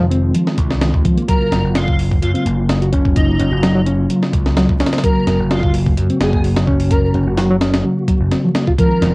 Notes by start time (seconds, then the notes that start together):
Already playing: F1 D#3 G#3 C4 F4
0.11 C4, closed hi-hat
0.34 F3, closed hi-hat
0.47 snare
0.58 C2, kick, closed hi-hat
0.71 snare
0.81 D#3, snare, closed hi-hat
0.94 D#2, kick
1.05 F3, kick, closed hi-hat
1.17 A#3, closed hi-hat
1.28 C#3 F#3 A#3 A#4, kick, closed hi-hat
1.52 F#1, snare, closed hi-hat
1.64 F#1
1.75 F4, snare, closed hi-hat
1.88 kick
1.99 open hi-hat
2.11 kick
2.22 F#2 F4, closed hi-hat
2.34 C4 F4, closed hi-hat
2.45 F#1 A#3, closed hi-hat
2.69 snare, closed hi-hat
2.81 F#4, closed hi-hat
2.92 F#1 C#4, kick, closed hi-hat
3.05 kick
3.16 D#4, kick, closed hi-hat
3.39 F#1 C#4, closed hi-hat
3.52 F#1 F#4
3.63 F#3, snare, closed hi-hat
3.75 F#3
3.86 C#4, closed hi-hat
4.10 F#3, closed hi-hat
4.23 snare
4.33 C#2, kick, closed hi-hat
4.46 snare
4.57 F#3, snare, closed hi-hat
4.69 C#2, kick
4.80 C#4, snare, closed hi-hat
4.86 snare, closed hi-hat
4.93 C4, snare, closed hi-hat
4.98 snare, closed hi-hat
5.04 F#3 F#4 A#4, kick, closed hi-hat
5.27 F#1, snare, closed hi-hat
5.40 F#1
5.51 F4, snare, closed hi-hat
5.63 kick
5.74 open hi-hat
5.86 kick
5.97 F#2, closed hi-hat
6.10 C4, closed hi-hat
6.20 F#1 A#3 G#4, snare, closed hi-hat
6.33 G#4, kick
6.44 open hi-hat
6.56 F#4, snare, closed hi-hat
6.67 F#1 C#4, kick
6.80 open hi-hat
6.91 A#4, kick, closed hi-hat
7.04 A#4
7.14 F#1 C#4, closed hi-hat
7.27 F#1 F#4
7.38 F#3, snare, closed hi-hat
7.51 F#3
7.61 C#4, snare, closed hi-hat
7.74 snare, closed hi-hat
7.85 F#3
8.08 F#3, kick, closed hi-hat
8.21 F#1
8.32 C4, snare, closed hi-hat
8.44 F3
8.55 A#3, snare, closed hi-hat
8.67 F4, kick
8.78 D#3 F3 G#3 C4 F4 A#4, kick, closed hi-hat
9.02 F1, snare, closed hi-hat